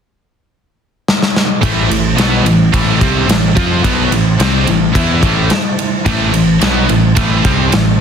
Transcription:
1.08 snare
1.23 snare
1.36 snare
1.61 A1 A2 E3 A3 E4 C5 A5, kick, ride
1.89 A1 A2 E3, ride
2.17 B1 B2 F#3 B3, snare, ride
2.44 A1 A2 E3, ride
2.73 A1 A2 E3 A3, kick, ride
3.01 C2 C3 G3 C4, kick, ride
3.28 A1 A2 E3, snare, ride
3.56 F2 F3 C4 F4, kick, ride
3.84 B1 B2 F#3 B3, kick, ride
4.11 A1 A2 E3, ride
4.40 C2 C3 G3 C4, snare, ride
4.67 A1 A2 E3, ride
4.95 E2 E3 B3 E4, kick, ride
5.23 A1 A2 E3 A3, kick, ride
5.50 snare, ride
5.79 ride
6.06 A1 A2 E3 A3, kick, ride
6.33 A1 A2 E3, ride
6.61 B1 B2 F#3 B3, snare, ride
6.89 A1 A2 E3, ride
7.17 A1 A2 E3 A3, kick, ride
7.43 C2 C3 G3 C4, kick, ride
7.72 A1 A2 E3, snare, ride

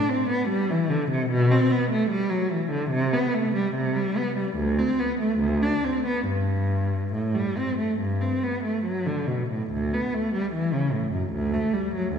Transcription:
0.09 C4
0.30 B3
0.49 G3
0.70 E3
0.90 D3
1.11 C3
1.31 B2
1.51 C4
1.71 B3
1.91 A3
2.10 G3
2.30 F#3
2.50 E3
2.71 D3
2.91 C3
3.13 B3
3.34 A3
3.56 G3
3.75 C3
3.95 G3
4.17 B3
4.37 G3
4.57 D2
4.78 C4
4.99 B3
5.21 A3
5.40 D2
5.62 D4
5.85 C4
6.07 B3
6.26 G2
7.14 A2
7.35 G3
7.58 C4
7.79 A3
8.00 G2
8.21 C4
8.43 B3
8.64 A3
8.85 F#3
9.06 D3
9.27 B2
9.50 A2
9.72 D2
9.94 B3
10.14 A3
10.34 G3
10.53 E3
10.73 C#3
10.93 A2
11.12 F#2
11.32 D2
11.54 A3
11.74 G3
11.95 F#3
12.13 D2

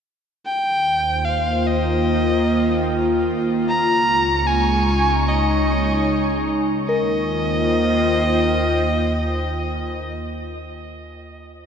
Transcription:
0.46 D#2 D#3 G5
0.78 C5
1.09 A#3 F4
1.25 F5
1.29 C5
1.67 D#5
1.93 G5
3.68 C#2 C#3 A#5 C#6
3.94 G#3
4.47 G#5
4.79 D#4
5.09 C#5
5.13 G#5
5.28 D#5
6.88 D#2 D#3 A#4 D#5
7.01 A#3
7.12 F4
7.24 C5
7.35 G5

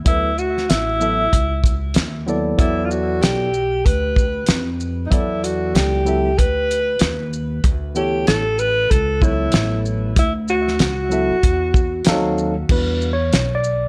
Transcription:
0.05 D2 F#3 B3 E4 A4 B4, kick, closed hi-hat
0.38 F#4, shaker
0.57 snare
0.69 A1 E4, snare, closed hi-hat
0.99 F#3 B3 E4 A4 E5, shaker
1.33 C#2, kick, closed hi-hat
1.64 kick, closed hi-hat, shaker
1.94 D#2, snare, closed hi-hat
2.26 F#3 B3 E4 A4 D5, shaker
2.57 E2 F#3 B3 E4 A4 D5, kick, closed hi-hat
2.85 F4
2.90 F#4, shaker
3.21 B1 G4, snare, closed hi-hat
3.54 shaker
3.86 D2 B4, kick, closed hi-hat
4.16 kick, shaker
4.46 F2, snare, closed hi-hat
4.80 shaker
5.06 F#3 D#4
5.11 E2 B3 E4 A4 D5, kick, closed hi-hat
5.43 F#4, closed hi-hat, shaker
5.75 C#2 G4, snare, closed hi-hat
6.05 F#3 B3 E4 A4 E5, shaker
6.38 D2 B4, kick, closed hi-hat
6.71 closed hi-hat, shaker
6.99 D#2, snare, closed hi-hat
7.33 shaker
7.64 D2, kick, closed hi-hat
7.94 E3 B3 E4 G4 A4 C#5, shaker
8.27 A1 A4, snare, closed hi-hat
8.59 B4, shaker
8.90 C#2 A4, kick, closed hi-hat
9.20 F#3 B3 E4 A4 C#5, kick, shaker
9.52 A1, snare, closed hi-hat
9.85 shaker
10.16 D2 E4, kick, closed hi-hat
10.48 F#4, shaker
10.68 snare
10.79 C#2 F#4, snare, closed hi-hat
11.09 F#3 B3 E4 A4 E5, shaker
11.30 muted upright bass stroke
11.43 E2, kick, closed hi-hat
11.74 kick, shaker
12.05 D#2 F3 C4 D#4 A4 F5, snare, closed hi-hat
12.11 F#3
12.38 shaker
12.69 E2 G3 D4 F#4 B4, kick, crash
13.02 shaker
13.13 C#5
13.33 B1, snare, closed hi-hat
13.55 D5
13.64 shaker

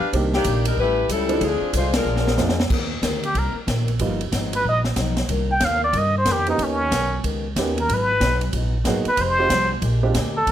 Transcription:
Already playing: D4 G4 B4 F5
0.00 muted upright bass stroke
0.13 C2 C3 D#3 A#3 C4 D4 G4, kick, ride
0.33 D#3 A#3 D4 G4, snare
0.44 A#1 C3 D#3 A#3 D4, kick, hi-hat pedal, ride
0.65 G3 D4 D#4 A#4, ride
0.77 A1 A2 G3 A3 C#4 E4 G4 B4, kick
0.82 F4
1.08 C#2 A2 G3 C#4 E4 F4, kick, hi-hat pedal, ride
1.13 G3 C#4 A4
1.29 F3 G#3 C4 D4 E4, ride
1.40 D2 D3 G#3 C4 F4, kick, ride
1.44 F3 C4 D4 G#4
1.61 muted upright bass stroke
1.73 C2 D3 G#3 C4 D4 F4 C5, kick, hi-hat pedal, ride
1.77 F4
1.93 G#3 D4 F4 A#4, snare, ride
2.05 A#1 A#2 F3 G#3 D4
2.17 snare
2.28 snare
2.37 F2 A#2 F3 G#3 A#3 C4 D4 F4, snare, hi-hat pedal
2.49 snare
2.60 snare
2.70 D#2 D#3 A#3 C4 G4, kick, crash
3.02 D2 D#3 A#3 C4 G4, kick, snare, hi-hat pedal, ride
3.23 G4, ride
3.35 C2 D#3 A#3 C4 G4, kick, ride
3.39 A#4
3.54 muted upright bass stroke
3.67 A#1 D#3 A#3 C4 G4, kick, snare, hi-hat pedal, ride
3.88 ride
3.99 G1 G2 F3 G3 A#3 B3 D#4 F4, kick, ride
4.21 ride
4.32 G#1 G2 F3 B3 D#4, kick, snare, hi-hat pedal, ride
4.53 B4, ride
4.64 A#1 G2 F3 B3 D#4, kick
4.69 D#5
4.84 snare
4.96 B1 G2 F3 B3 D#4, kick, snare, hi-hat pedal, ride
5.17 snare, ride
5.29 C2 C3 D#3 A#3 D4, kick, ride
5.52 G5
5.60 D#2 C3 D#3 A#3 D4, kick, snare, hi-hat pedal, ride
5.65 F5
5.84 D5
5.93 G2 C3 D#3 A#3 D4, kick, ride
5.98 D#5
6.18 C5
6.25 F2 C3 D#3 A#3 D4, kick, snare, hi-hat pedal, ride
6.32 G4
6.46 A#3 B3 C#4 D#4 G4, ride
6.58 D#2 D#3 B3 C#4 G4, kick, ride
6.64 C#4
6.91 B1 D#3 B3 C#4 G4, kick, snare, hi-hat pedal, ride
7.24 C#2 D#3 B3 C#4 G4, kick, ride
7.56 D#2 D#3 A#3 B3 C#4 D#4 G4, kick, snare, hi-hat pedal, ride
7.78 A#4, ride
7.89 G#1 G#2 F#3 B3 D#4, kick, ride
7.94 B4
8.20 B1 G#2 F#3 B3 D#4, kick, snare, hi-hat pedal, ride
8.41 ride
8.53 A#1 G#2 F#3 B3, kick, ride
8.57 D#4
8.84 G#1 G#2 F#3 A#3 B3 D#4 F#4 G#4, kick, snare, hi-hat pedal, ride
9.05 muted upright bass stroke, ride
9.09 B4
9.17 F1 F3 G#3 D#4 G4, kick, ride
9.21 C5
9.39 G#3 C4 D#4 F4 G4
9.49 C2 F3 G#3 D#4 G4, kick, snare, hi-hat pedal, ride
9.82 A#1 A#2 G#3 D4 G4, kick, ride
10.03 G#3 C4 D4 F4 G4
10.14 D2 A#2 G#3 D4 G4, kick, snare, hi-hat pedal, ride
10.37 A4
10.46 D#2 D#3 A#3 C4 G4, kick, ride

